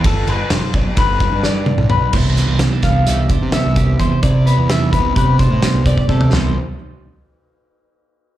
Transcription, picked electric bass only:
\new Staff \with { instrumentName = "Picked electric bass" } { \clef bass \time 9/8 \key c \major \tempo 4. = 86 g,,8 g,,16 r16 f,,16 r16 b,,16 r16 g,,8. g,4 b,,8. | c,8. c,8 r16 c,8 c,8 r16 c8 c,8. e,16 r16 | c8. e,8. c,8 c8. a,16 r16 c,8 r16 c8 | c,8 r1 | }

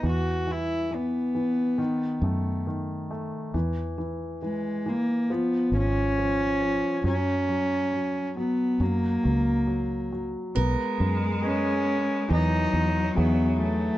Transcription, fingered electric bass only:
\new Staff \with { instrumentName = "Fingered electric bass" } { \clef bass \time 4/4 \key b \major \tempo 4 = 68 e,2 dis,8 fis,4. | e,2 eis,8 gis,,4. | fis,2 fis,8 cis,4. | b,,16 r16 fis,4. e,8 e,8 e,4 | }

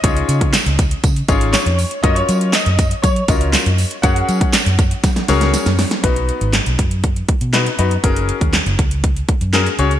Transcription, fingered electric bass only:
\new Staff \with { instrumentName = "Fingered electric bass" } { \clef bass \time 4/4 \key fis \major \tempo 4 = 120 cis,8 cis8. cis,8. cis8 gis,,8. eis,8 r16 | fis,8 fis8. fis,8. fis8 cis,8. fis,8 r16 | fis,8 fis8. fis,8. fis8 cis,8. fis,8 r16 | b,,8. gis,,8 b,,16 fis,4~ fis,16 b,8. fis,8 |
fis,,8. dis,8 fis,,16 cis,4~ cis,16 fis,8. cis,8 | }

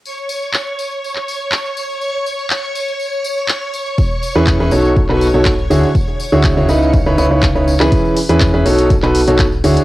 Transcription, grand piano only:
\new Staff \with { instrumentName = "Grand piano" } { \time 4/4 \key e \major \tempo 4 = 122 r1 | r1 | r8. <e cis' e' gis' b'>8 <cis' e' gis' b'>16 <b, dis' fis' a' cis''>8 r16 <b, dis' fis' a' b'>16 r16 <b, dis' fis' a' cis''>16 r8 <d e' fis' gis' cis''>16 r16 | r8. <d e' fis' gis' cis''>8 <cis e' fis' gis' cis''>16 <cis dis' e' b' dis''>8 r16 <cis dis' e' b' cis''>16 <cis dis' e' b' cis''>16 <cis dis' e' b' cis''>16 r16 <cis dis' e' b' cis''>16 r16 <e cis' e' gis' b'>16~ |
<e cis' e' gis' b'>8 r16 <e cis' e' gis' b'>8 <cis' e' gis' b'>16 <b, dis' fis' a' cis''>8 r16 <b, dis' fis' a' b'>16 r16 <b, dis' fis' a' cis''>16 r8 <d e' fis' gis' cis''>16 r16 | }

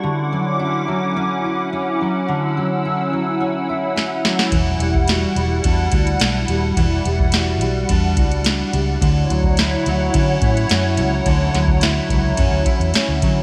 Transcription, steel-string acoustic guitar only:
\new Staff \with { instrumentName = "Steel-string acoustic guitar" } { \time 4/4 \key d \major \tempo 4 = 107 d8 fis8 e'8 fis8 cis'8 e'8 cis'8 fis8 | d8 fis8 e'8 fis8 cis'8 e'8 cis'8 fis8 | e8 g8 fis'8 g8 d'8 fis'8 d'8 g8 | e8 g8 fis'8 g8 d'8 fis'8 d'8 g8 |
d8 fis8 e'8 fis8 cis'8 e'8 cis'8 fis8 | d8 fis8 e'8 fis8 cis'8 e'8 cis'8 fis8 | }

